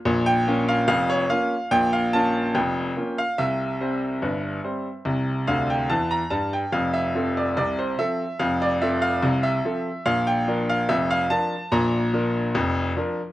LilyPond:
<<
  \new Staff \with { instrumentName = "Grand piano" } { \time 2/4 \key bes \lydian \tempo 4 = 72 r16 g''8 f''16 f''16 des''16 f''8 | g''16 f''16 a''8 g''8. f''16 | e''2~ | e''8 f''16 g''16 a''16 bes''16 a''16 g''16 |
f''16 e''8 d''16 d''16 c''16 e''8 | f''16 d''16 e''16 f''8 e''8. | f''16 g''8 f''16 e''16 f''16 a''8 | bes''4. r8 | }
  \new Staff \with { instrumentName = "Grand piano" } { \clef bass \time 2/4 \key bes \lydian <bes,, bes,>8 <bes des' f'>8 <f,, f,>8 <bes des' f'>8 | <bes,, bes,>8 <bes des' f'>8 <f,, f,>8 <bes des' f'>8 | <c, c>8 <g c' c''>8 <g,, g,>8 <g c' c''>8 | <c, c>8 <d, d>8 <e, e>8 <g, g>8 |
<f,, f,>8 <f c' a'>8 <c, c>8 <f c' a'>8 | <f,, f,>8 <f c' a'>8 <c, c>8 <f c' a'>8 | <bes,, bes,>8 <f d' bes'>8 <f,, f,>8 <f d' bes'>8 | <bes,, bes,>8 <f d' bes'>8 <f,, f,>8 <f d' bes'>8 | }
>>